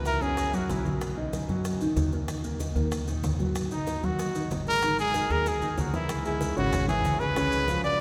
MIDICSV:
0, 0, Header, 1, 5, 480
1, 0, Start_track
1, 0, Key_signature, 5, "minor"
1, 0, Tempo, 317628
1, 1529, Time_signature, 4, 2, 24, 8
1, 12097, End_track
2, 0, Start_track
2, 0, Title_t, "Trumpet"
2, 0, Program_c, 0, 56
2, 100, Note_on_c, 0, 70, 87
2, 334, Note_on_c, 0, 68, 89
2, 356, Note_off_c, 0, 70, 0
2, 827, Note_on_c, 0, 66, 72
2, 849, Note_off_c, 0, 68, 0
2, 1073, Note_on_c, 0, 64, 57
2, 1096, Note_off_c, 0, 66, 0
2, 1422, Note_off_c, 0, 64, 0
2, 5633, Note_on_c, 0, 63, 76
2, 6115, Note_on_c, 0, 66, 90
2, 6138, Note_off_c, 0, 63, 0
2, 6824, Note_off_c, 0, 66, 0
2, 7076, Note_on_c, 0, 70, 105
2, 7512, Note_off_c, 0, 70, 0
2, 7555, Note_on_c, 0, 68, 101
2, 8033, Note_on_c, 0, 70, 94
2, 8055, Note_off_c, 0, 68, 0
2, 8285, Note_on_c, 0, 68, 78
2, 8308, Note_off_c, 0, 70, 0
2, 8740, Note_off_c, 0, 68, 0
2, 8749, Note_on_c, 0, 66, 60
2, 8964, Note_off_c, 0, 66, 0
2, 8988, Note_on_c, 0, 64, 77
2, 9427, Note_off_c, 0, 64, 0
2, 9455, Note_on_c, 0, 64, 79
2, 9900, Note_off_c, 0, 64, 0
2, 9941, Note_on_c, 0, 66, 92
2, 10382, Note_off_c, 0, 66, 0
2, 10410, Note_on_c, 0, 68, 90
2, 10881, Note_on_c, 0, 71, 109
2, 10903, Note_off_c, 0, 68, 0
2, 11839, Note_off_c, 0, 71, 0
2, 11848, Note_on_c, 0, 74, 96
2, 12097, Note_off_c, 0, 74, 0
2, 12097, End_track
3, 0, Start_track
3, 0, Title_t, "Grand piano"
3, 0, Program_c, 1, 0
3, 89, Note_on_c, 1, 64, 53
3, 91, Note_on_c, 1, 76, 53
3, 286, Note_off_c, 1, 64, 0
3, 287, Note_off_c, 1, 76, 0
3, 325, Note_on_c, 1, 61, 62
3, 331, Note_on_c, 1, 73, 65
3, 721, Note_off_c, 1, 61, 0
3, 724, Note_off_c, 1, 73, 0
3, 807, Note_on_c, 1, 54, 70
3, 812, Note_on_c, 1, 66, 72
3, 1202, Note_off_c, 1, 54, 0
3, 1205, Note_off_c, 1, 66, 0
3, 1288, Note_on_c, 1, 54, 59
3, 1295, Note_on_c, 1, 66, 55
3, 1683, Note_off_c, 1, 54, 0
3, 1687, Note_off_c, 1, 66, 0
3, 1771, Note_on_c, 1, 63, 64
3, 1778, Note_on_c, 1, 75, 60
3, 2165, Note_off_c, 1, 63, 0
3, 2169, Note_off_c, 1, 75, 0
3, 2259, Note_on_c, 1, 54, 66
3, 2263, Note_on_c, 1, 66, 69
3, 2649, Note_off_c, 1, 54, 0
3, 2652, Note_off_c, 1, 66, 0
3, 2743, Note_on_c, 1, 51, 75
3, 2751, Note_on_c, 1, 63, 73
3, 3132, Note_off_c, 1, 51, 0
3, 3137, Note_off_c, 1, 63, 0
3, 3221, Note_on_c, 1, 58, 63
3, 3228, Note_on_c, 1, 70, 58
3, 3414, Note_off_c, 1, 58, 0
3, 3418, Note_off_c, 1, 70, 0
3, 3457, Note_on_c, 1, 51, 66
3, 3457, Note_on_c, 1, 63, 65
3, 3652, Note_off_c, 1, 51, 0
3, 3652, Note_off_c, 1, 63, 0
3, 3692, Note_on_c, 1, 58, 67
3, 3696, Note_on_c, 1, 70, 63
3, 3889, Note_off_c, 1, 58, 0
3, 3891, Note_off_c, 1, 70, 0
3, 3930, Note_on_c, 1, 63, 53
3, 3933, Note_on_c, 1, 75, 53
3, 4128, Note_off_c, 1, 63, 0
3, 4130, Note_off_c, 1, 75, 0
3, 4161, Note_on_c, 1, 58, 60
3, 4163, Note_on_c, 1, 70, 61
3, 4560, Note_off_c, 1, 58, 0
3, 4561, Note_off_c, 1, 70, 0
3, 4652, Note_on_c, 1, 51, 72
3, 4658, Note_on_c, 1, 63, 77
3, 5046, Note_off_c, 1, 51, 0
3, 5050, Note_off_c, 1, 63, 0
3, 5139, Note_on_c, 1, 54, 56
3, 5142, Note_on_c, 1, 66, 59
3, 5531, Note_off_c, 1, 54, 0
3, 5532, Note_off_c, 1, 66, 0
3, 5621, Note_on_c, 1, 63, 67
3, 5626, Note_on_c, 1, 75, 65
3, 6012, Note_off_c, 1, 63, 0
3, 6015, Note_off_c, 1, 75, 0
3, 6098, Note_on_c, 1, 54, 70
3, 6101, Note_on_c, 1, 66, 59
3, 6490, Note_off_c, 1, 54, 0
3, 6492, Note_off_c, 1, 66, 0
3, 6580, Note_on_c, 1, 51, 68
3, 6582, Note_on_c, 1, 63, 73
3, 6971, Note_off_c, 1, 51, 0
3, 6972, Note_off_c, 1, 63, 0
3, 7066, Note_on_c, 1, 56, 59
3, 7070, Note_on_c, 1, 68, 59
3, 7258, Note_off_c, 1, 56, 0
3, 7260, Note_off_c, 1, 68, 0
3, 7306, Note_on_c, 1, 51, 61
3, 7309, Note_on_c, 1, 63, 64
3, 7498, Note_off_c, 1, 51, 0
3, 7500, Note_off_c, 1, 63, 0
3, 7539, Note_on_c, 1, 56, 69
3, 7549, Note_on_c, 1, 68, 62
3, 7734, Note_off_c, 1, 56, 0
3, 7739, Note_off_c, 1, 68, 0
3, 7783, Note_on_c, 1, 63, 55
3, 7791, Note_on_c, 1, 75, 55
3, 7976, Note_off_c, 1, 63, 0
3, 7981, Note_off_c, 1, 75, 0
3, 8016, Note_on_c, 1, 56, 65
3, 8023, Note_on_c, 1, 68, 61
3, 8408, Note_off_c, 1, 56, 0
3, 8412, Note_off_c, 1, 68, 0
3, 8491, Note_on_c, 1, 51, 81
3, 8492, Note_on_c, 1, 63, 76
3, 8885, Note_off_c, 1, 51, 0
3, 8886, Note_off_c, 1, 63, 0
3, 8965, Note_on_c, 1, 52, 60
3, 8970, Note_on_c, 1, 64, 61
3, 9165, Note_off_c, 1, 52, 0
3, 9168, Note_off_c, 1, 64, 0
3, 9454, Note_on_c, 1, 56, 71
3, 9459, Note_on_c, 1, 68, 68
3, 9462, Note_on_c, 1, 80, 71
3, 9846, Note_off_c, 1, 56, 0
3, 9850, Note_off_c, 1, 68, 0
3, 9851, Note_off_c, 1, 80, 0
3, 9922, Note_on_c, 1, 49, 79
3, 9929, Note_on_c, 1, 61, 78
3, 9933, Note_on_c, 1, 73, 75
3, 10319, Note_off_c, 1, 49, 0
3, 10323, Note_off_c, 1, 61, 0
3, 10325, Note_off_c, 1, 73, 0
3, 10399, Note_on_c, 1, 52, 68
3, 10403, Note_on_c, 1, 64, 69
3, 10411, Note_on_c, 1, 76, 72
3, 10797, Note_off_c, 1, 52, 0
3, 10799, Note_off_c, 1, 64, 0
3, 10804, Note_off_c, 1, 76, 0
3, 10883, Note_on_c, 1, 56, 64
3, 10891, Note_on_c, 1, 68, 68
3, 10892, Note_on_c, 1, 80, 65
3, 11082, Note_off_c, 1, 56, 0
3, 11087, Note_off_c, 1, 68, 0
3, 11088, Note_off_c, 1, 80, 0
3, 11128, Note_on_c, 1, 49, 78
3, 11133, Note_on_c, 1, 61, 69
3, 11137, Note_on_c, 1, 73, 70
3, 11522, Note_off_c, 1, 49, 0
3, 11525, Note_off_c, 1, 61, 0
3, 11527, Note_off_c, 1, 73, 0
3, 11615, Note_on_c, 1, 53, 56
3, 11618, Note_on_c, 1, 65, 56
3, 11627, Note_on_c, 1, 77, 62
3, 12005, Note_off_c, 1, 53, 0
3, 12007, Note_off_c, 1, 65, 0
3, 12012, Note_off_c, 1, 77, 0
3, 12097, End_track
4, 0, Start_track
4, 0, Title_t, "Upright bass"
4, 0, Program_c, 2, 32
4, 0, Note_on_c, 2, 37, 89
4, 235, Note_off_c, 2, 37, 0
4, 318, Note_on_c, 2, 42, 80
4, 993, Note_off_c, 2, 42, 0
4, 1045, Note_on_c, 2, 35, 85
4, 2164, Note_off_c, 2, 35, 0
4, 2244, Note_on_c, 2, 42, 85
4, 2918, Note_off_c, 2, 42, 0
4, 2966, Note_on_c, 2, 39, 77
4, 4085, Note_off_c, 2, 39, 0
4, 4163, Note_on_c, 2, 39, 88
4, 4614, Note_off_c, 2, 39, 0
4, 4653, Note_on_c, 2, 34, 62
4, 4876, Note_off_c, 2, 34, 0
4, 4888, Note_on_c, 2, 32, 84
4, 6006, Note_off_c, 2, 32, 0
4, 6089, Note_on_c, 2, 39, 90
4, 6761, Note_off_c, 2, 39, 0
4, 6812, Note_on_c, 2, 32, 79
4, 7928, Note_off_c, 2, 32, 0
4, 8007, Note_on_c, 2, 39, 92
4, 8456, Note_off_c, 2, 39, 0
4, 8489, Note_on_c, 2, 39, 64
4, 8714, Note_off_c, 2, 39, 0
4, 8728, Note_on_c, 2, 37, 81
4, 9845, Note_off_c, 2, 37, 0
4, 9923, Note_on_c, 2, 32, 88
4, 10595, Note_off_c, 2, 32, 0
4, 10637, Note_on_c, 2, 37, 90
4, 11757, Note_off_c, 2, 37, 0
4, 11847, Note_on_c, 2, 37, 88
4, 12097, Note_off_c, 2, 37, 0
4, 12097, End_track
5, 0, Start_track
5, 0, Title_t, "Drums"
5, 82, Note_on_c, 9, 70, 60
5, 83, Note_on_c, 9, 60, 53
5, 85, Note_on_c, 9, 63, 50
5, 233, Note_off_c, 9, 70, 0
5, 234, Note_off_c, 9, 60, 0
5, 236, Note_off_c, 9, 63, 0
5, 322, Note_on_c, 9, 60, 31
5, 330, Note_on_c, 9, 70, 27
5, 473, Note_off_c, 9, 60, 0
5, 482, Note_off_c, 9, 70, 0
5, 563, Note_on_c, 9, 60, 60
5, 568, Note_on_c, 9, 63, 31
5, 568, Note_on_c, 9, 70, 63
5, 714, Note_off_c, 9, 60, 0
5, 719, Note_off_c, 9, 63, 0
5, 719, Note_off_c, 9, 70, 0
5, 809, Note_on_c, 9, 60, 30
5, 810, Note_on_c, 9, 70, 53
5, 960, Note_off_c, 9, 60, 0
5, 961, Note_off_c, 9, 70, 0
5, 1049, Note_on_c, 9, 63, 75
5, 1050, Note_on_c, 9, 60, 27
5, 1050, Note_on_c, 9, 61, 80
5, 1054, Note_on_c, 9, 70, 58
5, 1200, Note_off_c, 9, 63, 0
5, 1202, Note_off_c, 9, 60, 0
5, 1202, Note_off_c, 9, 61, 0
5, 1205, Note_off_c, 9, 70, 0
5, 1291, Note_on_c, 9, 63, 70
5, 1293, Note_on_c, 9, 60, 27
5, 1295, Note_on_c, 9, 70, 24
5, 1442, Note_off_c, 9, 63, 0
5, 1444, Note_off_c, 9, 60, 0
5, 1446, Note_off_c, 9, 70, 0
5, 1528, Note_on_c, 9, 63, 29
5, 1528, Note_on_c, 9, 70, 70
5, 1533, Note_on_c, 9, 60, 63
5, 1679, Note_off_c, 9, 63, 0
5, 1679, Note_off_c, 9, 70, 0
5, 1684, Note_off_c, 9, 60, 0
5, 1768, Note_on_c, 9, 63, 29
5, 1920, Note_off_c, 9, 63, 0
5, 2009, Note_on_c, 9, 70, 68
5, 2014, Note_on_c, 9, 60, 53
5, 2016, Note_on_c, 9, 63, 53
5, 2160, Note_off_c, 9, 70, 0
5, 2165, Note_off_c, 9, 60, 0
5, 2168, Note_off_c, 9, 63, 0
5, 2245, Note_on_c, 9, 70, 25
5, 2254, Note_on_c, 9, 63, 29
5, 2256, Note_on_c, 9, 60, 31
5, 2396, Note_off_c, 9, 70, 0
5, 2405, Note_off_c, 9, 63, 0
5, 2407, Note_off_c, 9, 60, 0
5, 2489, Note_on_c, 9, 70, 67
5, 2492, Note_on_c, 9, 63, 32
5, 2494, Note_on_c, 9, 60, 59
5, 2640, Note_off_c, 9, 70, 0
5, 2643, Note_off_c, 9, 63, 0
5, 2646, Note_off_c, 9, 60, 0
5, 2731, Note_on_c, 9, 60, 30
5, 2733, Note_on_c, 9, 70, 50
5, 2736, Note_on_c, 9, 63, 32
5, 2882, Note_off_c, 9, 60, 0
5, 2884, Note_off_c, 9, 70, 0
5, 2887, Note_off_c, 9, 63, 0
5, 2971, Note_on_c, 9, 60, 31
5, 2971, Note_on_c, 9, 61, 72
5, 2973, Note_on_c, 9, 70, 62
5, 2978, Note_on_c, 9, 63, 75
5, 3122, Note_off_c, 9, 60, 0
5, 3122, Note_off_c, 9, 61, 0
5, 3124, Note_off_c, 9, 70, 0
5, 3129, Note_off_c, 9, 63, 0
5, 3208, Note_on_c, 9, 70, 26
5, 3215, Note_on_c, 9, 60, 27
5, 3359, Note_off_c, 9, 70, 0
5, 3366, Note_off_c, 9, 60, 0
5, 3449, Note_on_c, 9, 60, 62
5, 3450, Note_on_c, 9, 70, 70
5, 3458, Note_on_c, 9, 63, 29
5, 3600, Note_off_c, 9, 60, 0
5, 3601, Note_off_c, 9, 70, 0
5, 3609, Note_off_c, 9, 63, 0
5, 3689, Note_on_c, 9, 70, 52
5, 3691, Note_on_c, 9, 63, 32
5, 3840, Note_off_c, 9, 70, 0
5, 3843, Note_off_c, 9, 63, 0
5, 3926, Note_on_c, 9, 70, 67
5, 3933, Note_on_c, 9, 63, 51
5, 3937, Note_on_c, 9, 60, 54
5, 4077, Note_off_c, 9, 70, 0
5, 4084, Note_off_c, 9, 63, 0
5, 4088, Note_off_c, 9, 60, 0
5, 4165, Note_on_c, 9, 70, 26
5, 4171, Note_on_c, 9, 60, 32
5, 4316, Note_off_c, 9, 70, 0
5, 4322, Note_off_c, 9, 60, 0
5, 4406, Note_on_c, 9, 70, 69
5, 4411, Note_on_c, 9, 60, 63
5, 4416, Note_on_c, 9, 63, 30
5, 4557, Note_off_c, 9, 70, 0
5, 4562, Note_off_c, 9, 60, 0
5, 4567, Note_off_c, 9, 63, 0
5, 4648, Note_on_c, 9, 70, 52
5, 4649, Note_on_c, 9, 63, 33
5, 4650, Note_on_c, 9, 60, 28
5, 4799, Note_off_c, 9, 70, 0
5, 4800, Note_off_c, 9, 63, 0
5, 4801, Note_off_c, 9, 60, 0
5, 4888, Note_on_c, 9, 70, 62
5, 4889, Note_on_c, 9, 63, 77
5, 4892, Note_on_c, 9, 60, 34
5, 4892, Note_on_c, 9, 61, 77
5, 5039, Note_off_c, 9, 70, 0
5, 5040, Note_off_c, 9, 63, 0
5, 5043, Note_off_c, 9, 60, 0
5, 5043, Note_off_c, 9, 61, 0
5, 5125, Note_on_c, 9, 63, 73
5, 5132, Note_on_c, 9, 70, 26
5, 5138, Note_on_c, 9, 60, 24
5, 5277, Note_off_c, 9, 63, 0
5, 5283, Note_off_c, 9, 70, 0
5, 5289, Note_off_c, 9, 60, 0
5, 5368, Note_on_c, 9, 70, 71
5, 5374, Note_on_c, 9, 60, 61
5, 5379, Note_on_c, 9, 63, 30
5, 5519, Note_off_c, 9, 70, 0
5, 5525, Note_off_c, 9, 60, 0
5, 5531, Note_off_c, 9, 63, 0
5, 5606, Note_on_c, 9, 70, 50
5, 5619, Note_on_c, 9, 63, 28
5, 5758, Note_off_c, 9, 70, 0
5, 5771, Note_off_c, 9, 63, 0
5, 5845, Note_on_c, 9, 70, 68
5, 5853, Note_on_c, 9, 60, 55
5, 5855, Note_on_c, 9, 63, 49
5, 5996, Note_off_c, 9, 70, 0
5, 6004, Note_off_c, 9, 60, 0
5, 6007, Note_off_c, 9, 63, 0
5, 6090, Note_on_c, 9, 70, 25
5, 6096, Note_on_c, 9, 60, 30
5, 6099, Note_on_c, 9, 63, 32
5, 6242, Note_off_c, 9, 70, 0
5, 6247, Note_off_c, 9, 60, 0
5, 6250, Note_off_c, 9, 63, 0
5, 6330, Note_on_c, 9, 70, 66
5, 6339, Note_on_c, 9, 60, 61
5, 6344, Note_on_c, 9, 63, 29
5, 6481, Note_off_c, 9, 70, 0
5, 6490, Note_off_c, 9, 60, 0
5, 6495, Note_off_c, 9, 63, 0
5, 6573, Note_on_c, 9, 70, 53
5, 6578, Note_on_c, 9, 63, 30
5, 6580, Note_on_c, 9, 60, 29
5, 6724, Note_off_c, 9, 70, 0
5, 6729, Note_off_c, 9, 63, 0
5, 6731, Note_off_c, 9, 60, 0
5, 6810, Note_on_c, 9, 70, 64
5, 6812, Note_on_c, 9, 63, 67
5, 6824, Note_on_c, 9, 60, 31
5, 6824, Note_on_c, 9, 61, 80
5, 6961, Note_off_c, 9, 70, 0
5, 6963, Note_off_c, 9, 63, 0
5, 6976, Note_off_c, 9, 60, 0
5, 6976, Note_off_c, 9, 61, 0
5, 7053, Note_on_c, 9, 70, 22
5, 7057, Note_on_c, 9, 60, 24
5, 7204, Note_off_c, 9, 70, 0
5, 7208, Note_off_c, 9, 60, 0
5, 7292, Note_on_c, 9, 70, 72
5, 7293, Note_on_c, 9, 60, 63
5, 7302, Note_on_c, 9, 63, 28
5, 7443, Note_off_c, 9, 70, 0
5, 7444, Note_off_c, 9, 60, 0
5, 7453, Note_off_c, 9, 63, 0
5, 7535, Note_on_c, 9, 70, 53
5, 7545, Note_on_c, 9, 63, 30
5, 7686, Note_off_c, 9, 70, 0
5, 7696, Note_off_c, 9, 63, 0
5, 7771, Note_on_c, 9, 60, 53
5, 7774, Note_on_c, 9, 70, 70
5, 7790, Note_on_c, 9, 63, 56
5, 7922, Note_off_c, 9, 60, 0
5, 7925, Note_off_c, 9, 70, 0
5, 7941, Note_off_c, 9, 63, 0
5, 8009, Note_on_c, 9, 70, 26
5, 8015, Note_on_c, 9, 60, 32
5, 8160, Note_off_c, 9, 70, 0
5, 8166, Note_off_c, 9, 60, 0
5, 8252, Note_on_c, 9, 70, 59
5, 8253, Note_on_c, 9, 60, 69
5, 8267, Note_on_c, 9, 63, 30
5, 8403, Note_off_c, 9, 70, 0
5, 8404, Note_off_c, 9, 60, 0
5, 8418, Note_off_c, 9, 63, 0
5, 8488, Note_on_c, 9, 70, 50
5, 8511, Note_on_c, 9, 63, 32
5, 8639, Note_off_c, 9, 70, 0
5, 8662, Note_off_c, 9, 63, 0
5, 8729, Note_on_c, 9, 61, 79
5, 8731, Note_on_c, 9, 70, 56
5, 8742, Note_on_c, 9, 63, 70
5, 8880, Note_off_c, 9, 61, 0
5, 8882, Note_off_c, 9, 70, 0
5, 8893, Note_off_c, 9, 63, 0
5, 8970, Note_on_c, 9, 61, 79
5, 8973, Note_on_c, 9, 70, 27
5, 8979, Note_on_c, 9, 63, 67
5, 9121, Note_off_c, 9, 61, 0
5, 9124, Note_off_c, 9, 70, 0
5, 9130, Note_off_c, 9, 63, 0
5, 9205, Note_on_c, 9, 70, 72
5, 9207, Note_on_c, 9, 60, 70
5, 9226, Note_on_c, 9, 63, 34
5, 9356, Note_off_c, 9, 70, 0
5, 9358, Note_off_c, 9, 60, 0
5, 9377, Note_off_c, 9, 63, 0
5, 9447, Note_on_c, 9, 70, 55
5, 9462, Note_on_c, 9, 63, 32
5, 9598, Note_off_c, 9, 70, 0
5, 9613, Note_off_c, 9, 63, 0
5, 9683, Note_on_c, 9, 60, 59
5, 9690, Note_on_c, 9, 70, 74
5, 9692, Note_on_c, 9, 63, 52
5, 9834, Note_off_c, 9, 60, 0
5, 9841, Note_off_c, 9, 70, 0
5, 9843, Note_off_c, 9, 63, 0
5, 9927, Note_on_c, 9, 60, 34
5, 9929, Note_on_c, 9, 70, 29
5, 9942, Note_on_c, 9, 63, 34
5, 10078, Note_off_c, 9, 60, 0
5, 10080, Note_off_c, 9, 70, 0
5, 10093, Note_off_c, 9, 63, 0
5, 10164, Note_on_c, 9, 70, 67
5, 10166, Note_on_c, 9, 60, 60
5, 10175, Note_on_c, 9, 63, 34
5, 10175, Note_on_c, 9, 64, 84
5, 10316, Note_off_c, 9, 70, 0
5, 10317, Note_off_c, 9, 60, 0
5, 10326, Note_off_c, 9, 63, 0
5, 10326, Note_off_c, 9, 64, 0
5, 10407, Note_on_c, 9, 70, 55
5, 10411, Note_on_c, 9, 63, 36
5, 10413, Note_on_c, 9, 60, 33
5, 10558, Note_off_c, 9, 70, 0
5, 10562, Note_off_c, 9, 63, 0
5, 10565, Note_off_c, 9, 60, 0
5, 10646, Note_on_c, 9, 63, 79
5, 10647, Note_on_c, 9, 70, 60
5, 10654, Note_on_c, 9, 60, 29
5, 10654, Note_on_c, 9, 61, 73
5, 10797, Note_off_c, 9, 63, 0
5, 10798, Note_off_c, 9, 70, 0
5, 10805, Note_off_c, 9, 60, 0
5, 10805, Note_off_c, 9, 61, 0
5, 10890, Note_on_c, 9, 60, 31
5, 10890, Note_on_c, 9, 70, 25
5, 11041, Note_off_c, 9, 60, 0
5, 11041, Note_off_c, 9, 70, 0
5, 11129, Note_on_c, 9, 60, 69
5, 11129, Note_on_c, 9, 63, 32
5, 11132, Note_on_c, 9, 70, 72
5, 11280, Note_off_c, 9, 60, 0
5, 11281, Note_off_c, 9, 63, 0
5, 11283, Note_off_c, 9, 70, 0
5, 11365, Note_on_c, 9, 70, 59
5, 11370, Note_on_c, 9, 63, 31
5, 11516, Note_off_c, 9, 70, 0
5, 11521, Note_off_c, 9, 63, 0
5, 11601, Note_on_c, 9, 63, 56
5, 11605, Note_on_c, 9, 60, 53
5, 11615, Note_on_c, 9, 70, 69
5, 11753, Note_off_c, 9, 63, 0
5, 11756, Note_off_c, 9, 60, 0
5, 11766, Note_off_c, 9, 70, 0
5, 11849, Note_on_c, 9, 60, 38
5, 11850, Note_on_c, 9, 70, 27
5, 12000, Note_off_c, 9, 60, 0
5, 12001, Note_off_c, 9, 70, 0
5, 12097, End_track
0, 0, End_of_file